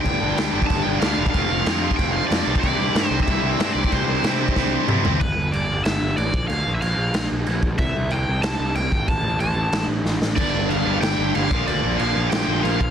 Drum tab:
CC |x---x---x---x---|x---x---x---x---|x---x---x---x---|x---x-----------|
SD |----o-------o---|----o-------o---|----o-------o---|----o---o-------|
T2 |----------------|----------------|----------------|------------o---|
FT |----------------|----------------|----------------|--------------o-|
BD |o------oo------o|o------oo------o|o------oo------o|o------oo-------|

CC |x---x---x---x---|x---x---x---x---|x---x---x---x---|x---x---x-------|
SD |--------o-------|--------o-------|--------o-------|--------o---o-o-|
T2 |----------------|----------------|----------------|----------------|
FT |----------------|----------------|----------------|----------------|
BD |o-------------o-|--------------o-|o-------------o-|o---------------|

CC |x---x---x---x---|x---x---x---x---|
SD |--------o-------|--------o-------|
T2 |----------------|----------------|
FT |----------------|----------------|
BD |o-------------o-|--------------o-|